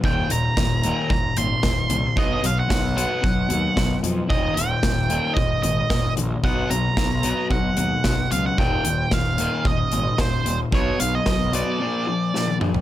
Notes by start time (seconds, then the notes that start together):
0.04 D#1 D#2 A#2 D#3 G5, kick
0.30 D#1 D#2 A#2 A#5, closed hi-hat
0.57 D#1 D#2 A#2, kick, snare
0.83 D#2 A#2 D#3, closed hi-hat
1.10 D#1 D#2 A#2 A#5, kick
1.37 G#1 D#2 A#2 C6, closed hi-hat
1.63 D#1 D#2 A#2, kick, snare
1.89 C2 D#2 A#2, closed hi-hat
2.16 B1 B2 F#3 B3 D#5, kick
2.43 B1 B2 F#3 F5, closed hi-hat
2.59 F#5
2.69 B1 B2 F#3, kick, snare
2.96 B2 F#3 B3 F#5, closed hi-hat
3.22 B1 B2 F#3, kick
3.49 D#2 B2 F#3, closed hi-hat
3.76 B1 B2 F#3, kick, snare
4.03 F2 B2 F#3, closed hi-hat
4.28 D#1 D#2 A#2 D#3 D#5, kick
4.54 D#1 D#2 A#2 G5, closed hi-hat
4.83 D#1 D#2 A#2, kick, snare
5.10 D#2 A#2 D#3, closed hi-hat
5.34 D#1 D#2 A#2 D#5, kick
5.63 G#1 D#2 A#2 D#5, closed hi-hat
5.90 D#1 D#2 A#2, kick, snare
6.17 A#1 D#2 A#2, closed hi-hat
6.43 B1 B2 F#3 B3 F#5, kick
6.70 B1 B2 F#3 A#5, closed hi-hat
6.97 B1 B2 F#3, kick, snare
7.23 B2 F#3 B3, closed hi-hat
7.50 B1 B2 F#3 F#5, kick
7.77 D#2 B2 F#3 F#5, closed hi-hat
8.04 B1 B2 F#3, kick, snare
8.32 C#2 B2 F#3 F5, closed hi-hat
8.46 F#5
8.58 D#1 D#2 A#2 D#3 G5, kick
8.85 D#1 D#2 A#2, closed hi-hat
9.11 D#1 D#2 A#2 F5, kick, snare
9.38 D#2 A#2 D#3, closed hi-hat
9.65 D#1 D#2 A#2 D#5, kick
9.92 G#1 D#2 A#2, closed hi-hat
10.18 D#1 D#2 A#2 C5, kick, snare
10.46 D#1 D#2 A#2, closed hi-hat
10.72 B1 B2 F#3 B3 C#5, kick
10.99 B1 B2 F#3 F5, closed hi-hat
11.15 D#5
11.26 B1 B2 F#3, kick, snare
11.53 B2 F#3 B3 D5, closed hi-hat
11.80 A#2 F3 A#3
12.07 A#2 F3
12.34 A#2 F3, snare
12.48 high tom
12.60 A#2 F3, mid tom
12.74 floor tom